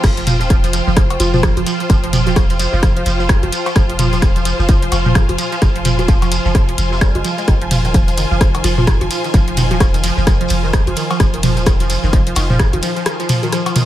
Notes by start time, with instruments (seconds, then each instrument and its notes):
Already playing: string section F4 C5 G5
0.03 sub bass F1, synth pluck F3, kick, cross-stick, closed hi-hat, crash, shekere
0.17 synth pluck F3, closed hi-hat
0.27 synth pluck F3, closed hi-hat, mid tom, shekere
0.41 sub bass D#1, synth pluck F3, closed hi-hat, shekere
0.49 synth pluck F3, kick, cross-stick, closed hi-hat, shekere
0.64 sub bass F1, synth pluck F3, closed hi-hat, shekere
0.73 synth pluck F3, closed hi-hat, shekere
0.87 sub bass F1, synth pluck F3, shekere
0.97 synth pluck F3, kick, cross-stick, closed hi-hat, shekere
1.10 synth pluck F3, closed hi-hat, cowbell
1.20 sub bass F1, synth pluck F3, soft synth lead F4, closed hi-hat, shekere
1.34 synth pluck F3, soft synth lead F4, mid tom, shekere
1.43 synth pluck F3, kick, cross-stick, closed hi-hat
1.57 sub bass F1, synth pluck F3, closed hi-hat, high conga
1.66 synth pluck F3, closed hi-hat, shekere
1.80 synth pluck F3, closed hi-hat, shekere
1.90 sub bass F1, synth pluck F3, kick, cross-stick, closed hi-hat, shekere
2.04 synth pluck F3, closed hi-hat
2.13 synth pluck F3, closed hi-hat, mid tom, shekere
2.26 sub bass D#1, synth pluck F3, closed hi-hat, high conga, shekere
2.36 synth pluck F3, kick, cross-stick, closed hi-hat, cowbell, shekere
2.50 sub bass F1, synth pluck F3, closed hi-hat, shekere
2.59 synth pluck F3, closed hi-hat, shekere
2.73 sub bass F1, synth pluck F3, shekere
2.83 synth pluck F3, kick, cross-stick, closed hi-hat, shekere
2.97 synth pluck F3, closed hi-hat
3.06 sub bass F1, synth pluck F3, closed hi-hat, shekere
3.20 synth pluck F3, shekere
3.29 synth pluck F3, kick, cross-stick, closed hi-hat, shekere
3.43 sub bass F1, synth pluck F3, closed hi-hat, high conga
3.52 synth pluck F3, closed hi-hat, shekere
3.66 synth pluck F3, closed hi-hat, cowbell, shekere
3.76 sub bass F1, synth pluck F3, kick, cross-stick, closed hi-hat, shekere
3.90 synth pluck F3, closed hi-hat
3.99 synth pluck F3, closed hi-hat, mid tom, shekere
4.13 sub bass D#1, synth pluck F3, closed hi-hat, shekere
4.22 synth pluck F3, string section G#5, kick, cross-stick, closed hi-hat, shekere
4.36 sub bass F1, synth pluck F3, closed hi-hat, shekere
4.45 synth pluck F3, closed hi-hat, shekere
4.59 sub bass F1, synth pluck F3, shekere
4.69 synth pluck F3, kick, cross-stick, closed hi-hat, shekere
4.82 synth pluck F3, closed hi-hat
4.92 sub bass F1, synth pluck F3, closed hi-hat, cowbell, shekere
5.05 synth pluck F3, mid tom, shekere
5.15 synth pluck F3, kick, cross-stick, closed hi-hat, shekere
5.29 sub bass F1, synth pluck F3, closed hi-hat, high conga
5.38 synth pluck F3, closed hi-hat, shekere
5.52 synth pluck F3, closed hi-hat, shekere
5.62 sub bass F1, synth pluck F3, kick, cross-stick, closed hi-hat, shekere
5.76 synth pluck F3, closed hi-hat
5.85 synth pluck F3, closed hi-hat, mid tom, shekere
5.98 sub bass D#1, synth pluck F3, closed hi-hat, high conga, shekere
6.08 synth pluck F3, kick, cross-stick, closed hi-hat, shekere
6.22 sub bass F1, synth pluck F3, closed hi-hat, cowbell, shekere
6.32 synth pluck F3, closed hi-hat, shekere
6.45 sub bass F1, synth pluck F3, shekere
6.55 synth pluck F3, kick, cross-stick, closed hi-hat, shekere
6.69 synth pluck F3, closed hi-hat
6.78 sub bass F1, closed hi-hat, shekere
6.92 synth pluck C3, shekere
7.01 synth pluck G3, kick, cross-stick, closed hi-hat
7.15 sub bass F1, synth pluck G#3, closed hi-hat, high conga
7.25 synth pluck F3, closed hi-hat, shekere
7.38 synth pluck G#3, closed hi-hat, shekere
7.48 sub bass F1, synth pluck D#3, kick, cross-stick, closed hi-hat, shekere
7.62 synth pluck F3, closed hi-hat
7.71 synth pluck F3, closed hi-hat, mid tom, ride, shekere
7.85 sub bass D#1, synth pluck D#3, closed hi-hat, shekere
7.94 synth pluck F3, kick, cross-stick, closed hi-hat, shekere
8.08 sub bass F1, synth pluck F3, closed hi-hat, shekere
8.17 synth pluck D#3, closed hi-hat, ride, shekere
8.31 sub bass F1, synth pluck F3, shekere
8.41 synth pluck F3, kick, cross-stick, closed hi-hat, shekere
8.55 synth pluck D#3, closed hi-hat, cowbell
8.64 sub bass F1, synth pluck F3, soft synth lead F4, closed hi-hat, ride, shekere
8.78 synth pluck F3, soft synth lead F4, mid tom, shekere
8.87 synth pluck D#3, kick, cross-stick, closed hi-hat, shekere
9.01 sub bass F1, synth pluck F3, closed hi-hat, high conga
9.11 synth pluck F3, closed hi-hat, ride, shekere
9.24 synth pluck D#3, closed hi-hat, shekere
9.34 sub bass F1, synth pluck F3, kick, cross-stick, closed hi-hat, shekere
9.48 synth pluck F3, closed hi-hat
9.57 synth pluck D#3, closed hi-hat, mid tom, ride, shekere
9.71 sub bass D#1, synth pluck F3, closed hi-hat, high conga, shekere
9.80 synth pluck F3, kick, cross-stick, closed hi-hat, cowbell, shekere
9.94 sub bass F1, synth pluck D#3, closed hi-hat, shekere
10.04 synth pluck F3, closed hi-hat, ride, shekere
10.17 sub bass F1, synth pluck F3, shekere
10.27 synth pluck D#3, kick, cross-stick, closed hi-hat, shekere
10.41 synth pluck F3, closed hi-hat
10.48 sub bass F1, synth pluck F3, closed hi-hat, ride, shekere
10.64 synth pluck D#3, shekere
10.73 synth pluck F3, kick, cross-stick, closed hi-hat, shekere
10.87 sub bass F1, synth pluck F3, closed hi-hat, high conga
10.96 synth pluck D#3, closed hi-hat, ride, shekere
11.11 synth pluck F3, closed hi-hat, cowbell, shekere
11.20 sub bass F1, synth pluck F3, kick, cross-stick, closed hi-hat, shekere
11.34 synth pluck D#3, closed hi-hat
11.43 synth pluck F3, closed hi-hat, mid tom, ride, shekere
11.57 sub bass D#1, synth pluck F3, closed hi-hat, shekere
11.66 synth pluck D#3, kick, cross-stick, closed hi-hat, shekere
11.80 sub bass F1, synth pluck F3, closed hi-hat, shekere
11.90 synth pluck F3, closed hi-hat, ride, shekere
12.03 sub bass F1, synth pluck D#3, shekere
12.12 synth pluck F3, kick, cross-stick, closed hi-hat, shekere
12.27 synth pluck F3, closed hi-hat
12.36 sub bass F1, synth pluck D#3, closed hi-hat, ride, cowbell, shekere
12.50 synth pluck F3, mid tom, shekere
12.59 kick, cross-stick, closed hi-hat, shekere
12.73 sub bass F1, synth pluck D#3, closed hi-hat, high conga
12.82 synth pluck F3, closed hi-hat, ride, shekere
12.96 synth pluck F3, closed hi-hat, shekere
13.06 synth pluck D#3, cross-stick, closed hi-hat, shekere
13.20 synth pluck F3, closed hi-hat, shekere
13.29 synth pluck F3, closed hi-hat, mid tom, ride, shekere
13.43 synth pluck D#3, closed hi-hat, high conga, shekere
13.52 synth pluck F3, cross-stick, closed hi-hat, shekere
13.66 synth pluck F3, closed hi-hat, cowbell, shekere
13.76 synth pluck D#3, closed hi-hat, mid tom, ride, shekere